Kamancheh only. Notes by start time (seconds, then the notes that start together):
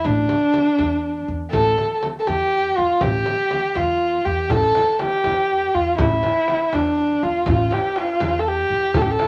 0.05 D4
1.52 A4
2.20 A4
2.26 G4
2.77 F4
3.02 G4
3.76 F4
4.25 G4
4.50 A4
4.92 A4
4.99 G4
5.74 F4
5.98 E4
6.74 D4
7.23 F4
7.48 F4
7.73 G4
7.98 F4
8.40 A4
8.48 G4
8.97 A4
9.02 G4
9.11 A4